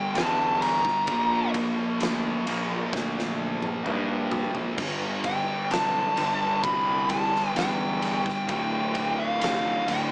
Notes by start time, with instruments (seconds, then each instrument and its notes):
Already playing: distorted electric guitar G2 D3 G3, lead electric guitar G5
0.15 fingered electric bass E2, distorted electric guitar G2 D3 G3, lead electric guitar A5, snare, ride
0.62 lead electric guitar A#5, ride
0.85 kick, snare
1.07 fingered electric bass A#1, distorted electric guitar A#2 F3, kick, ride
1.11 distorted electric guitar A#3
1.54 kick, ride
2.00 fingered electric bass D2, snare, ride
2.47 fingered electric bass A#1, distorted electric guitar A#2 F3 A#3, ride
2.93 fingered electric bass D2, kick, snare
3.19 snare
3.62 high tom
3.85 fingered electric bass G2, distorted electric guitar A#2 F3 A#3, mid tom
4.32 floor tom
4.55 floor tom
4.77 fingered electric bass G1, distorted electric guitar G2 D3 G3, kick, crash
5.24 lead electric guitar G5, kick, ride
5.71 fingered electric bass B1, lead electric guitar A5, snare, ride
6.16 fingered electric bass G1, distorted electric guitar G2 D3 G3, ride
6.63 fingered electric bass C2, lead electric guitar B5, kick, ride
7.09 lead electric guitar A5, kick, ride
7.36 snare
7.55 fingered electric bass E2, distorted electric guitar G2 D3 G3, lead electric guitar G5, snare, ride
8.02 ride
8.26 kick, snare
8.48 fingered electric bass D1, distorted electric guitar D2 A2 D3, lead electric guitar G5, kick, ride
8.95 kick, ride
9.20 lead electric guitar F5
9.41 fingered electric bass F1, snare, ride
9.87 fingered electric bass D1, distorted electric guitar D2 A2 D3, lead electric guitar G5, ride